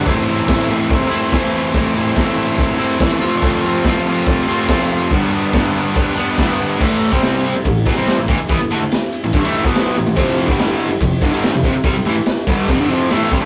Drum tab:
CC |x---x---x---x---|x---x---x---x---|x---x---x---x---|x---x---x---x---|
RD |----------------|----------------|----------------|----------------|
SD |----o-------o---|----o-------o---|----o-------o---|----o-------o---|
BD |o---o---o---o---|o---o---o---o---|o---o---o---o---|o---o---o---o---|

CC |x---------------|----------------|----------------|----------------|
RD |--x-x-x-x-x-x-x-|x-x-x-x-x-x-x-x-|x-x-x-x-x-x-x-x-|x-x-x-x-x-x-x-x-|
SD |----o-------o---|----o-------o---|----o-------o---|----o-------o---|
BD |o--o----o-o---o-|o-------o--o----|o--o----o-o---o-|o-----o-o-----o-|